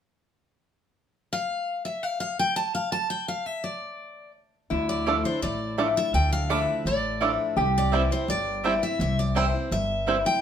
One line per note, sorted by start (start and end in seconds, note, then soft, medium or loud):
1.33 1.85 F5 medium
1.85 2.03 E5 medium
2.03 2.19 F5 medium
2.20 2.39 F5 medium
2.39 2.56 G5 medium
2.56 2.74 A5 loud
2.75 2.92 F5 medium
2.92 3.10 A5 loud
3.10 3.26 G5 medium
3.28 3.46 F5 medium
3.46 3.64 E5 medium
3.64 4.31 D5 medium
4.70 5.22 D2 medium
4.70 5.39 D3 medium
4.70 7.53 E4 medium
4.89 5.25 D5 medium
5.06 5.24 F3 medium
5.06 5.15 A3 medium
5.06 5.25 A3 medium
5.06 5.25 D4 medium
5.06 5.10 D4 medium
5.06 5.16 E4 medium
5.06 5.23 E4 medium
5.06 5.16 A4 medium
5.06 5.16 F5 medium
5.06 5.16 D6 loud
5.24 5.42 D4 soft
5.24 5.41 E4 medium
5.24 5.41 C5 medium
5.42 5.93 A1 medium
5.42 6.11 A2 medium
5.42 5.93 D5 medium
5.78 5.96 F3 medium
5.78 5.86 A3 medium
5.78 5.96 A3 medium
5.78 5.81 D4 medium
5.78 5.96 D4 medium
5.78 5.87 E4 medium
5.78 5.95 E4 medium
5.78 5.88 A4 medium
5.78 5.88 F5 medium
5.78 5.88 D6 medium
5.96 6.14 D4 soft
5.96 6.13 E4 medium
5.96 6.13 E5 loud
6.13 6.64 D2 medium
6.13 6.82 D3 medium
6.13 6.32 G5 medium
6.33 6.50 F5 loud
6.49 6.84 F3 medium
6.49 6.58 A3 medium
6.49 6.84 A3 medium
6.49 6.84 D4 medium
6.49 6.53 D4 medium
6.49 6.59 E4 medium
6.49 6.85 E4 medium
6.49 6.59 A4 medium
6.49 6.87 E5 medium
6.49 6.59 F5 loud
6.49 6.59 D6 loud
6.85 7.36 A1 medium
6.85 7.54 A2 medium
6.85 7.36 D5 medium
7.21 7.55 F3 medium
7.21 7.30 A3 medium
7.21 7.56 A3 medium
7.21 7.24 D4 medium
7.21 7.56 D4 medium
7.21 7.30 E4 loud
7.21 7.56 E4 medium
7.21 7.30 A4 medium
7.21 7.31 F5 medium
7.21 7.31 D6 medium
7.56 8.07 C2 loud
7.56 8.25 C3 medium
7.56 10.21 G4 medium
7.78 8.12 D5 medium
7.92 8.10 E3 medium
7.92 8.01 G3 medium
7.92 8.11 G3 medium
7.92 8.01 C4 loud
7.92 8.01 C4 medium
7.92 8.11 C4 medium
7.92 8.02 E4 medium
7.92 8.01 E4 medium
7.92 8.10 E4 medium
7.92 8.02 C5 loud
7.92 8.02 G5 loud
8.11 8.29 C4 soft
8.11 8.28 E4 medium
8.11 8.29 C5 medium
8.28 8.79 G1 medium
8.28 8.96 G2 medium
8.28 8.85 D5 medium
8.63 8.81 E3 soft
8.63 8.82 G3 medium
8.63 8.73 G3 medium
8.63 8.73 C4 medium
8.63 8.82 C4 medium
8.63 8.73 C4 medium
8.63 8.73 E4 medium
8.63 8.80 E4 medium
8.63 8.74 C5 loud
8.63 8.74 G5 loud
8.82 9.00 C4 soft
8.82 8.99 E4 medium
8.82 8.99 E5 medium
8.99 9.50 C2 medium
8.99 9.68 C3 medium
8.99 9.18 E5 medium
9.19 9.36 D5 medium
9.35 9.53 E3 soft
9.35 9.54 G3 medium
9.35 9.44 G3 medium
9.35 9.45 C4 medium
9.35 9.44 C4 medium
9.35 9.54 C4 medium
9.35 9.45 E4 loud
9.35 9.44 E4 medium
9.35 9.53 E4 medium
9.35 9.45 C5 loud
9.35 9.73 C5 medium
9.35 9.45 G5 loud
9.54 9.72 C4 soft
9.54 9.71 E4 medium
9.71 10.22 G1 medium
9.71 10.39 G2 medium
9.71 10.22 E5 loud
10.06 10.24 E3 soft
10.06 10.25 G3 medium
10.06 10.16 G3 medium
10.06 10.16 C4 medium
10.06 10.25 C4 medium
10.06 10.16 C4 medium
10.06 10.16 E4 medium
10.06 10.24 E4 medium
10.06 10.17 C5 medium
10.06 10.17 G5 medium
10.25 10.41 C4 soft
10.25 10.41 E4 medium
10.25 10.41 G5 loud